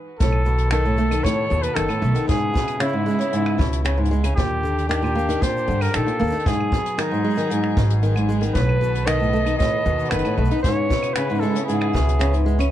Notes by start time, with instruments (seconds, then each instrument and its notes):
0.19 upright bass B1, nylon-string guitar A2, string quartet D#3 B3 A4, flugelhorn A4, kick, closed hi-hat, shaker
0.32 claves
0.45 nylon-string guitar B2, shaker
0.58 closed hi-hat, shaker
0.71 nylon-string guitar D#3, flugelhorn A4, finger snap, closed hi-hat, shaker
0.85 nylon-string guitar A2, shaker
0.98 nylon-string guitar A3, shaker
1.11 nylon-string guitar D#3, closed hi-hat, claves, shaker
1.23 nylon-string guitar A2, flugelhorn C#5, kick, closed hi-hat, shaker
1.50 upright bass D#2, nylon-string guitar B2, shaker
1.62 flugelhorn B4, closed hi-hat, shaker
1.75 upright bass F#1, nylon-string guitar D#3, flugelhorn A4, finger snap, closed hi-hat, shaker
1.88 nylon-string guitar A2, closed hi-hat, claves
2.02 upright bass B1, nylon-string guitar A3, shaker
2.15 nylon-string guitar D#3, closed hi-hat, shaker
2.27 nylon-string guitar G#2, string quartet C#3 E4, flugelhorn G#4, kick, closed hi-hat, shaker
2.54 nylon-string guitar B2, kick, shaker
2.67 closed hi-hat, claves, shaker
2.80 nylon-string guitar C#3, flugelhorn E4, finger snap, closed hi-hat, shaker
2.88 shaker
2.93 nylon-string guitar G#2
3.06 nylon-string guitar G#3, shaker
3.19 nylon-string guitar C#3, closed hi-hat, shaker
3.33 nylon-string guitar G#2, closed hi-hat, shaker
3.46 finger snap, claves
3.58 upright bass C#2, nylon-string guitar B2, kick, shaker
3.72 closed hi-hat, shaker
3.85 nylon-string guitar C#3, finger snap, closed hi-hat, shaker
3.98 nylon-string guitar G#2
4.05 closed hi-hat
4.11 nylon-string guitar G#3, shaker
4.24 nylon-string guitar C#3, closed hi-hat, claves, shaker
4.36 upright bass D#2, nylon-string guitar A#2, string quartet D4 G4, flugelhorn G4, kick, closed hi-hat, shaker
4.63 nylon-string guitar D3, shaker
4.78 closed hi-hat, shaker
4.89 nylon-string guitar D#3, flugelhorn G4, finger snap, closed hi-hat, shaker
5.02 nylon-string guitar A#2, claves, shaker
5.15 nylon-string guitar A#3, shaker
5.29 nylon-string guitar D#3, closed hi-hat, shaker
5.42 nylon-string guitar A#2, flugelhorn C5, kick, closed hi-hat
5.57 shaker
5.68 upright bass G2, nylon-string guitar D3, shaker
5.81 flugelhorn A#4, closed hi-hat, claves, shaker
5.85 closed hi-hat
5.87 closed hi-hat
5.90 closed hi-hat
5.92 nylon-string guitar D#3, closed hi-hat
5.94 upright bass A#1, flugelhorn A4, finger snap, closed hi-hat, shaker
6.07 nylon-string guitar A#2, closed hi-hat
6.20 upright bass D#2, nylon-string guitar A#3, shaker
6.23 shaker
6.27 shaker
6.29 shaker
6.32 nylon-string guitar D#3, closed hi-hat, shaker
6.35 shaker
6.39 closed hi-hat
6.46 nylon-string guitar G#2, string quartet F#3 B3 G#4, flugelhorn G#4, kick, closed hi-hat, shaker
6.53 closed hi-hat
6.60 claves
6.72 nylon-string guitar B2, kick, shaker
6.86 closed hi-hat, shaker
6.98 nylon-string guitar D#3, flugelhorn D#4, finger snap, closed hi-hat, shaker
7.11 nylon-string guitar G#2, shaker
7.25 nylon-string guitar G#3, shaker
7.30 shaker
7.34 nylon-string guitar D#3, closed hi-hat, shaker
7.39 shaker
7.50 nylon-string guitar G#2, closed hi-hat, shaker
7.64 finger snap
7.77 upright bass G#1, nylon-string guitar B2, kick, shaker
7.90 closed hi-hat, shaker
8.03 nylon-string guitar D#3, closed hi-hat, shaker
8.15 nylon-string guitar G#2, closed hi-hat, claves
8.29 nylon-string guitar G#3, shaker
8.41 nylon-string guitar D#3, closed hi-hat, shaker
8.54 upright bass B1, nylon-string guitar A2, string quartet D#3 A4, flugelhorn B4, vibraphone B4, kick, closed hi-hat, shaker
8.69 claves
8.81 nylon-string guitar B2, vibraphone B4, shaker
8.95 closed hi-hat, shaker
9.06 nylon-string guitar D#3, vibraphone B4, flugelhorn D#5, finger snap, closed hi-hat, shaker
9.20 nylon-string guitar A2, shaker
9.33 nylon-string guitar A3, vibraphone B4, shaker
9.46 nylon-string guitar D#4, closed hi-hat, claves, shaker
9.58 nylon-string guitar A2, flugelhorn D#5, vibraphone B5, kick, closed hi-hat, shaker
9.86 upright bass D#2, nylon-string guitar B2, vibraphone F#5, shaker
9.98 closed hi-hat, shaker
10.05 closed hi-hat
10.10 upright bass F#1, nylon-string guitar D#3, flugelhorn B4, vibraphone D#5, finger snap, closed hi-hat, shaker
10.19 closed hi-hat
10.25 nylon-string guitar A2, closed hi-hat, claves
10.36 upright bass B1, nylon-string guitar A3, flugelhorn B4, vibraphone B4
10.45 shaker
10.51 nylon-string guitar D#4, closed hi-hat
10.59 string quartet C#3, flugelhorn C#5, shaker
10.63 nylon-string guitar G#2, string quartet E4, vibraphone B4, kick, closed hi-hat, shaker
10.71 shaker
10.89 nylon-string guitar B2, vibraphone B4, kick, shaker
11.03 closed hi-hat, claves, shaker
11.14 nylon-string guitar C#3, flugelhorn B4, vibraphone B4, finger snap, closed hi-hat, shaker
11.30 nylon-string guitar G#2, shaker
11.34 shaker
11.38 flugelhorn A4, shaker
11.41 nylon-string guitar G#3, vibraphone B5, shaker
11.43 shaker
11.47 shaker
11.50 shaker
11.54 nylon-string guitar C#4, closed hi-hat, shaker
11.56 shaker
11.66 nylon-string guitar G#2, flugelhorn G#4, vibraphone F#5, closed hi-hat
11.70 shaker
11.81 finger snap, claves
11.94 upright bass C#2, nylon-string guitar B2, vibraphone E5, kick, shaker
12.08 closed hi-hat, shaker
12.19 nylon-string guitar C#3, vibraphone B4, finger snap, closed hi-hat, shaker
12.33 nylon-string guitar G#2, closed hi-hat
12.46 nylon-string guitar G#3, vibraphone B4, shaker
12.59 nylon-string guitar C#4, closed hi-hat, claves, shaker